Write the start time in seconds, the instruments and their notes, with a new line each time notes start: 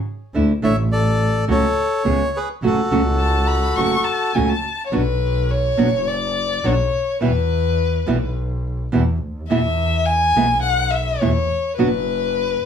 0.34 double bass D2, nylon-string guitar D3 A3 D4 E4
0.62 double bass A1, nylon-string guitar D3 A3 D4 E4, bandoneon C#5 E5
0.92 bandoneon A4 D5
1.48 double bass C#2, nylon-string guitar C#3 F#3 A3 C#4 F#4, bandoneon A4 C#5
2.04 double bass C#2, nylon-string guitar C#3 G#3 B3 F4 G#4
2.36 bandoneon G#4 B4
2.62 double bass F#1, nylon-string guitar C#3 F#3 A3 C#4 F#4, bandoneon F#4 A4
2.91 double bass C#2, nylon-string guitar C#3 F#3 A3 C#4 F#4
3.19 violin A5
3.47 violin B5
3.76 double bass F#1, nylon-string guitar C#3 F#3 A3 C#4 F#4, violin C#6
4.04 violin A5
4.34 double bass C#2, nylon-string guitar C#3 F#3 A3 C#4 F#4, violin G#5
4.49 violin A5
4.86 violin C#5
4.92 double bass B1, nylon-string guitar B2 F#3 B3 D4 F#4, violin B4
5.51 violin C#5
5.77 double bass F#1, nylon-string guitar B2 F#3 B3 D4 F#4
6.08 violin D5
6.64 double bass B1, nylon-string guitar B2 F#3 B3 D4 F#4, violin C#5
7.21 double bass E2, nylon-string guitar B2 E3 G3 B3 E4, violin B4
8.07 double bass B1, nylon-string guitar B2 E3 G3 B3 E4
8.92 double bass E2, nylon-string guitar B2 E3 G3 B3 E4
9.22 double bass D2
9.49 double bass E2, nylon-string guitar B2 E3 G#3 B3 E4, violin E5
10.06 violin G#5
10.35 double bass B1, nylon-string guitar B2 E3 G#3 B3 E4
10.63 violin F#5
10.91 violin E5
11.20 double bass E2, nylon-string guitar B2 E3 G#3 B3 E4, violin C#5
11.77 double bass F#1, nylon-string guitar B2 F#3 B3 D4 F#4, violin B4